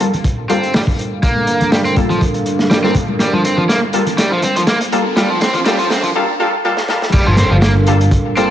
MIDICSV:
0, 0, Header, 1, 8, 480
1, 0, Start_track
1, 0, Key_signature, -2, "minor"
1, 0, Tempo, 491803
1, 1202, Time_signature, 4, 2, 24, 8
1, 8300, End_track
2, 0, Start_track
2, 0, Title_t, "Analog synth pad"
2, 0, Program_c, 0, 89
2, 0, Note_on_c, 0, 55, 83
2, 0, Note_on_c, 0, 62, 75
2, 0, Note_on_c, 0, 69, 75
2, 0, Note_on_c, 0, 70, 75
2, 0, Note_on_c, 0, 77, 88
2, 5964, Note_off_c, 0, 62, 0
2, 5964, Note_off_c, 0, 69, 0
2, 5964, Note_off_c, 0, 70, 0
2, 5965, Note_off_c, 0, 55, 0
2, 5965, Note_off_c, 0, 77, 0
2, 6966, Note_on_c, 0, 55, 80
2, 6966, Note_on_c, 0, 62, 77
2, 6966, Note_on_c, 0, 69, 76
2, 6966, Note_on_c, 0, 70, 78
2, 6966, Note_on_c, 0, 77, 92
2, 8300, Note_off_c, 0, 55, 0
2, 8300, Note_off_c, 0, 62, 0
2, 8300, Note_off_c, 0, 69, 0
2, 8300, Note_off_c, 0, 70, 0
2, 8300, Note_off_c, 0, 77, 0
2, 8300, End_track
3, 0, Start_track
3, 0, Title_t, "Synth stab"
3, 0, Program_c, 1, 62
3, 4, Note_on_c, 1, 55, 86
3, 4, Note_on_c, 1, 58, 78
3, 4, Note_on_c, 1, 65, 77
3, 4, Note_on_c, 1, 69, 95
3, 109, Note_off_c, 1, 55, 0
3, 109, Note_off_c, 1, 58, 0
3, 109, Note_off_c, 1, 65, 0
3, 109, Note_off_c, 1, 69, 0
3, 484, Note_on_c, 1, 55, 101
3, 484, Note_on_c, 1, 58, 94
3, 484, Note_on_c, 1, 65, 95
3, 485, Note_on_c, 1, 69, 113
3, 647, Note_off_c, 1, 55, 0
3, 647, Note_off_c, 1, 58, 0
3, 647, Note_off_c, 1, 65, 0
3, 648, Note_off_c, 1, 69, 0
3, 1922, Note_on_c, 1, 55, 99
3, 1922, Note_on_c, 1, 58, 87
3, 1922, Note_on_c, 1, 69, 108
3, 1923, Note_on_c, 1, 65, 85
3, 2086, Note_off_c, 1, 55, 0
3, 2086, Note_off_c, 1, 58, 0
3, 2086, Note_off_c, 1, 65, 0
3, 2086, Note_off_c, 1, 69, 0
3, 2771, Note_on_c, 1, 69, 97
3, 2772, Note_on_c, 1, 55, 88
3, 2772, Note_on_c, 1, 58, 80
3, 2772, Note_on_c, 1, 65, 81
3, 2863, Note_off_c, 1, 69, 0
3, 2864, Note_off_c, 1, 55, 0
3, 2864, Note_off_c, 1, 58, 0
3, 2864, Note_off_c, 1, 65, 0
3, 3842, Note_on_c, 1, 58, 76
3, 3842, Note_on_c, 1, 69, 90
3, 3843, Note_on_c, 1, 55, 78
3, 3843, Note_on_c, 1, 65, 76
3, 3948, Note_off_c, 1, 58, 0
3, 3948, Note_off_c, 1, 65, 0
3, 3948, Note_off_c, 1, 69, 0
3, 3949, Note_off_c, 1, 55, 0
3, 4803, Note_on_c, 1, 55, 86
3, 4803, Note_on_c, 1, 65, 80
3, 4803, Note_on_c, 1, 69, 97
3, 4804, Note_on_c, 1, 58, 79
3, 4908, Note_off_c, 1, 55, 0
3, 4909, Note_off_c, 1, 58, 0
3, 4909, Note_off_c, 1, 65, 0
3, 4909, Note_off_c, 1, 69, 0
3, 5047, Note_on_c, 1, 55, 90
3, 5047, Note_on_c, 1, 65, 80
3, 5047, Note_on_c, 1, 69, 95
3, 5048, Note_on_c, 1, 58, 83
3, 5150, Note_off_c, 1, 55, 0
3, 5150, Note_off_c, 1, 65, 0
3, 5150, Note_off_c, 1, 69, 0
3, 5151, Note_off_c, 1, 58, 0
3, 5525, Note_on_c, 1, 55, 90
3, 5525, Note_on_c, 1, 65, 80
3, 5526, Note_on_c, 1, 58, 80
3, 5526, Note_on_c, 1, 69, 100
3, 5629, Note_off_c, 1, 55, 0
3, 5630, Note_off_c, 1, 58, 0
3, 5630, Note_off_c, 1, 65, 0
3, 5630, Note_off_c, 1, 69, 0
3, 6005, Note_on_c, 1, 55, 92
3, 6005, Note_on_c, 1, 58, 88
3, 6005, Note_on_c, 1, 69, 103
3, 6007, Note_on_c, 1, 65, 86
3, 6110, Note_off_c, 1, 55, 0
3, 6110, Note_off_c, 1, 58, 0
3, 6110, Note_off_c, 1, 65, 0
3, 6110, Note_off_c, 1, 69, 0
3, 6242, Note_on_c, 1, 65, 86
3, 6242, Note_on_c, 1, 69, 109
3, 6243, Note_on_c, 1, 58, 87
3, 6244, Note_on_c, 1, 55, 93
3, 6348, Note_off_c, 1, 58, 0
3, 6348, Note_off_c, 1, 65, 0
3, 6348, Note_off_c, 1, 69, 0
3, 6349, Note_off_c, 1, 55, 0
3, 6487, Note_on_c, 1, 58, 88
3, 6487, Note_on_c, 1, 65, 86
3, 6487, Note_on_c, 1, 69, 105
3, 6488, Note_on_c, 1, 55, 93
3, 6590, Note_off_c, 1, 65, 0
3, 6590, Note_off_c, 1, 69, 0
3, 6591, Note_off_c, 1, 55, 0
3, 6591, Note_off_c, 1, 58, 0
3, 6726, Note_on_c, 1, 69, 106
3, 6727, Note_on_c, 1, 55, 93
3, 6727, Note_on_c, 1, 58, 90
3, 6727, Note_on_c, 1, 65, 89
3, 6830, Note_off_c, 1, 55, 0
3, 6830, Note_off_c, 1, 58, 0
3, 6830, Note_off_c, 1, 65, 0
3, 6830, Note_off_c, 1, 69, 0
3, 7684, Note_on_c, 1, 55, 87
3, 7684, Note_on_c, 1, 69, 98
3, 7685, Note_on_c, 1, 58, 83
3, 7686, Note_on_c, 1, 65, 82
3, 7789, Note_off_c, 1, 55, 0
3, 7789, Note_off_c, 1, 58, 0
3, 7789, Note_off_c, 1, 69, 0
3, 7790, Note_off_c, 1, 65, 0
3, 8165, Note_on_c, 1, 55, 100
3, 8165, Note_on_c, 1, 58, 95
3, 8165, Note_on_c, 1, 65, 93
3, 8166, Note_on_c, 1, 69, 112
3, 8300, Note_off_c, 1, 55, 0
3, 8300, Note_off_c, 1, 58, 0
3, 8300, Note_off_c, 1, 65, 0
3, 8300, Note_off_c, 1, 69, 0
3, 8300, End_track
4, 0, Start_track
4, 0, Title_t, "Overdriven electric guitar"
4, 0, Program_c, 2, 29
4, 485, Note_on_c, 2, 60, 74
4, 713, Note_off_c, 2, 60, 0
4, 725, Note_on_c, 2, 55, 82
4, 777, Note_off_c, 2, 55, 0
4, 1203, Note_on_c, 2, 58, 81
4, 1671, Note_off_c, 2, 58, 0
4, 1682, Note_on_c, 2, 55, 81
4, 1736, Note_off_c, 2, 55, 0
4, 1810, Note_on_c, 2, 60, 99
4, 1889, Note_off_c, 2, 60, 0
4, 2053, Note_on_c, 2, 53, 75
4, 2158, Note_off_c, 2, 53, 0
4, 2642, Note_on_c, 2, 55, 84
4, 2696, Note_off_c, 2, 55, 0
4, 2770, Note_on_c, 2, 60, 98
4, 2849, Note_off_c, 2, 60, 0
4, 3126, Note_on_c, 2, 55, 75
4, 3239, Note_off_c, 2, 55, 0
4, 3253, Note_on_c, 2, 53, 90
4, 3330, Note_off_c, 2, 53, 0
4, 3367, Note_on_c, 2, 60, 70
4, 3480, Note_off_c, 2, 60, 0
4, 3494, Note_on_c, 2, 53, 95
4, 3539, Note_off_c, 2, 53, 0
4, 3604, Note_on_c, 2, 58, 87
4, 3693, Note_off_c, 2, 58, 0
4, 4084, Note_on_c, 2, 55, 78
4, 4199, Note_off_c, 2, 55, 0
4, 4214, Note_on_c, 2, 53, 97
4, 4291, Note_off_c, 2, 53, 0
4, 4327, Note_on_c, 2, 60, 72
4, 4440, Note_off_c, 2, 60, 0
4, 4455, Note_on_c, 2, 53, 97
4, 4500, Note_off_c, 2, 53, 0
4, 4567, Note_on_c, 2, 58, 91
4, 4654, Note_off_c, 2, 58, 0
4, 5046, Note_on_c, 2, 55, 81
4, 5159, Note_off_c, 2, 55, 0
4, 5171, Note_on_c, 2, 53, 94
4, 5249, Note_off_c, 2, 53, 0
4, 5284, Note_on_c, 2, 60, 77
4, 5398, Note_off_c, 2, 60, 0
4, 5410, Note_on_c, 2, 53, 103
4, 5458, Note_off_c, 2, 53, 0
4, 5523, Note_on_c, 2, 55, 80
4, 5638, Note_off_c, 2, 55, 0
4, 5650, Note_on_c, 2, 53, 103
4, 5729, Note_off_c, 2, 53, 0
4, 5760, Note_on_c, 2, 60, 76
4, 5876, Note_off_c, 2, 60, 0
4, 5889, Note_on_c, 2, 53, 102
4, 5937, Note_off_c, 2, 53, 0
4, 6962, Note_on_c, 2, 55, 83
4, 7078, Note_off_c, 2, 55, 0
4, 7090, Note_on_c, 2, 53, 98
4, 7169, Note_off_c, 2, 53, 0
4, 7202, Note_on_c, 2, 60, 75
4, 7318, Note_off_c, 2, 60, 0
4, 7332, Note_on_c, 2, 53, 104
4, 7378, Note_off_c, 2, 53, 0
4, 7441, Note_on_c, 2, 58, 97
4, 7532, Note_off_c, 2, 58, 0
4, 8165, Note_on_c, 2, 60, 78
4, 8300, Note_off_c, 2, 60, 0
4, 8300, End_track
5, 0, Start_track
5, 0, Title_t, "Analog synth bass"
5, 0, Program_c, 3, 38
5, 6964, Note_on_c, 3, 31, 42
5, 7066, Note_off_c, 3, 31, 0
5, 7092, Note_on_c, 3, 31, 104
5, 7261, Note_off_c, 3, 31, 0
5, 7332, Note_on_c, 3, 31, 86
5, 7995, Note_off_c, 3, 31, 0
5, 8300, End_track
6, 0, Start_track
6, 0, Title_t, "Impact"
6, 0, Program_c, 4, 103
6, 6963, Note_on_c, 4, 60, 77
6, 8300, Note_off_c, 4, 60, 0
6, 8300, End_track
7, 0, Start_track
7, 0, Title_t, "Riser"
7, 0, Program_c, 5, 103
7, 0, Note_on_c, 5, 60, 79
7, 6003, Note_off_c, 5, 60, 0
7, 8300, End_track
8, 0, Start_track
8, 0, Title_t, "Drums"
8, 4, Note_on_c, 9, 42, 66
8, 102, Note_off_c, 9, 42, 0
8, 134, Note_on_c, 9, 42, 42
8, 139, Note_on_c, 9, 64, 85
8, 231, Note_off_c, 9, 42, 0
8, 236, Note_off_c, 9, 64, 0
8, 239, Note_on_c, 9, 36, 96
8, 241, Note_on_c, 9, 42, 75
8, 336, Note_off_c, 9, 36, 0
8, 339, Note_off_c, 9, 42, 0
8, 484, Note_on_c, 9, 42, 70
8, 491, Note_on_c, 9, 63, 60
8, 581, Note_off_c, 9, 42, 0
8, 588, Note_off_c, 9, 63, 0
8, 619, Note_on_c, 9, 42, 39
8, 716, Note_off_c, 9, 42, 0
8, 720, Note_on_c, 9, 46, 81
8, 724, Note_on_c, 9, 38, 107
8, 728, Note_on_c, 9, 64, 87
8, 817, Note_off_c, 9, 46, 0
8, 821, Note_off_c, 9, 38, 0
8, 826, Note_off_c, 9, 64, 0
8, 850, Note_on_c, 9, 36, 87
8, 948, Note_off_c, 9, 36, 0
8, 967, Note_on_c, 9, 42, 66
8, 1065, Note_off_c, 9, 42, 0
8, 1197, Note_on_c, 9, 36, 111
8, 1199, Note_on_c, 9, 42, 88
8, 1295, Note_off_c, 9, 36, 0
8, 1297, Note_off_c, 9, 42, 0
8, 1330, Note_on_c, 9, 63, 74
8, 1427, Note_off_c, 9, 63, 0
8, 1436, Note_on_c, 9, 42, 60
8, 1534, Note_off_c, 9, 42, 0
8, 1569, Note_on_c, 9, 42, 44
8, 1573, Note_on_c, 9, 64, 99
8, 1666, Note_off_c, 9, 42, 0
8, 1671, Note_off_c, 9, 64, 0
8, 1680, Note_on_c, 9, 38, 117
8, 1683, Note_on_c, 9, 42, 81
8, 1777, Note_off_c, 9, 38, 0
8, 1781, Note_off_c, 9, 42, 0
8, 1807, Note_on_c, 9, 42, 46
8, 1905, Note_off_c, 9, 42, 0
8, 1917, Note_on_c, 9, 42, 61
8, 1918, Note_on_c, 9, 36, 99
8, 2014, Note_off_c, 9, 42, 0
8, 2016, Note_off_c, 9, 36, 0
8, 2046, Note_on_c, 9, 64, 86
8, 2056, Note_on_c, 9, 42, 39
8, 2144, Note_off_c, 9, 64, 0
8, 2153, Note_off_c, 9, 42, 0
8, 2159, Note_on_c, 9, 36, 104
8, 2167, Note_on_c, 9, 42, 89
8, 2257, Note_off_c, 9, 36, 0
8, 2265, Note_off_c, 9, 42, 0
8, 2286, Note_on_c, 9, 42, 44
8, 2383, Note_off_c, 9, 42, 0
8, 2400, Note_on_c, 9, 42, 65
8, 2498, Note_off_c, 9, 42, 0
8, 2528, Note_on_c, 9, 38, 49
8, 2626, Note_off_c, 9, 38, 0
8, 2637, Note_on_c, 9, 64, 80
8, 2644, Note_on_c, 9, 42, 88
8, 2647, Note_on_c, 9, 38, 99
8, 2735, Note_off_c, 9, 64, 0
8, 2742, Note_off_c, 9, 42, 0
8, 2744, Note_off_c, 9, 38, 0
8, 2765, Note_on_c, 9, 38, 49
8, 2863, Note_off_c, 9, 38, 0
8, 2875, Note_on_c, 9, 36, 82
8, 2875, Note_on_c, 9, 42, 72
8, 2973, Note_off_c, 9, 36, 0
8, 2973, Note_off_c, 9, 42, 0
8, 3009, Note_on_c, 9, 63, 80
8, 3107, Note_off_c, 9, 63, 0
8, 3115, Note_on_c, 9, 38, 46
8, 3125, Note_on_c, 9, 42, 74
8, 3212, Note_off_c, 9, 38, 0
8, 3223, Note_off_c, 9, 42, 0
8, 3252, Note_on_c, 9, 63, 78
8, 3349, Note_off_c, 9, 63, 0
8, 3364, Note_on_c, 9, 42, 67
8, 3461, Note_off_c, 9, 42, 0
8, 3490, Note_on_c, 9, 64, 102
8, 3588, Note_off_c, 9, 64, 0
8, 3604, Note_on_c, 9, 38, 53
8, 3607, Note_on_c, 9, 42, 79
8, 3702, Note_off_c, 9, 38, 0
8, 3705, Note_off_c, 9, 42, 0
8, 3837, Note_on_c, 9, 42, 69
8, 3935, Note_off_c, 9, 42, 0
8, 3966, Note_on_c, 9, 64, 73
8, 3970, Note_on_c, 9, 42, 44
8, 4064, Note_off_c, 9, 64, 0
8, 4067, Note_off_c, 9, 42, 0
8, 4081, Note_on_c, 9, 42, 89
8, 4082, Note_on_c, 9, 38, 52
8, 4178, Note_off_c, 9, 42, 0
8, 4180, Note_off_c, 9, 38, 0
8, 4317, Note_on_c, 9, 42, 77
8, 4330, Note_on_c, 9, 63, 70
8, 4415, Note_off_c, 9, 42, 0
8, 4428, Note_off_c, 9, 63, 0
8, 4454, Note_on_c, 9, 42, 70
8, 4551, Note_off_c, 9, 42, 0
8, 4553, Note_on_c, 9, 64, 81
8, 4558, Note_on_c, 9, 38, 69
8, 4559, Note_on_c, 9, 42, 84
8, 4650, Note_off_c, 9, 64, 0
8, 4656, Note_off_c, 9, 38, 0
8, 4656, Note_off_c, 9, 42, 0
8, 4692, Note_on_c, 9, 42, 79
8, 4789, Note_off_c, 9, 42, 0
8, 4806, Note_on_c, 9, 42, 63
8, 4904, Note_off_c, 9, 42, 0
8, 5040, Note_on_c, 9, 38, 68
8, 5044, Note_on_c, 9, 42, 82
8, 5138, Note_off_c, 9, 38, 0
8, 5142, Note_off_c, 9, 42, 0
8, 5176, Note_on_c, 9, 63, 68
8, 5273, Note_off_c, 9, 63, 0
8, 5281, Note_on_c, 9, 42, 66
8, 5289, Note_on_c, 9, 38, 78
8, 5379, Note_off_c, 9, 42, 0
8, 5387, Note_off_c, 9, 38, 0
8, 5402, Note_on_c, 9, 64, 100
8, 5410, Note_on_c, 9, 42, 45
8, 5500, Note_off_c, 9, 64, 0
8, 5508, Note_off_c, 9, 42, 0
8, 5519, Note_on_c, 9, 42, 85
8, 5525, Note_on_c, 9, 38, 88
8, 5617, Note_off_c, 9, 42, 0
8, 5623, Note_off_c, 9, 38, 0
8, 5650, Note_on_c, 9, 42, 44
8, 5748, Note_off_c, 9, 42, 0
8, 5756, Note_on_c, 9, 63, 59
8, 5761, Note_on_c, 9, 38, 81
8, 5779, Note_on_c, 9, 42, 76
8, 5854, Note_off_c, 9, 63, 0
8, 5859, Note_off_c, 9, 38, 0
8, 5876, Note_off_c, 9, 42, 0
8, 5883, Note_on_c, 9, 64, 85
8, 5892, Note_on_c, 9, 42, 47
8, 5981, Note_off_c, 9, 64, 0
8, 5989, Note_off_c, 9, 42, 0
8, 6607, Note_on_c, 9, 38, 51
8, 6705, Note_off_c, 9, 38, 0
8, 6720, Note_on_c, 9, 38, 80
8, 6818, Note_off_c, 9, 38, 0
8, 6853, Note_on_c, 9, 38, 85
8, 6950, Note_off_c, 9, 38, 0
8, 6954, Note_on_c, 9, 42, 77
8, 6963, Note_on_c, 9, 49, 89
8, 6964, Note_on_c, 9, 36, 112
8, 7051, Note_off_c, 9, 42, 0
8, 7061, Note_off_c, 9, 49, 0
8, 7062, Note_off_c, 9, 36, 0
8, 7190, Note_on_c, 9, 38, 46
8, 7196, Note_on_c, 9, 42, 64
8, 7288, Note_off_c, 9, 38, 0
8, 7294, Note_off_c, 9, 42, 0
8, 7438, Note_on_c, 9, 38, 122
8, 7444, Note_on_c, 9, 42, 92
8, 7535, Note_off_c, 9, 38, 0
8, 7541, Note_off_c, 9, 42, 0
8, 7676, Note_on_c, 9, 42, 74
8, 7774, Note_off_c, 9, 42, 0
8, 7816, Note_on_c, 9, 42, 46
8, 7914, Note_off_c, 9, 42, 0
8, 7918, Note_on_c, 9, 36, 112
8, 7920, Note_on_c, 9, 42, 84
8, 8016, Note_off_c, 9, 36, 0
8, 8018, Note_off_c, 9, 42, 0
8, 8166, Note_on_c, 9, 42, 71
8, 8264, Note_off_c, 9, 42, 0
8, 8300, End_track
0, 0, End_of_file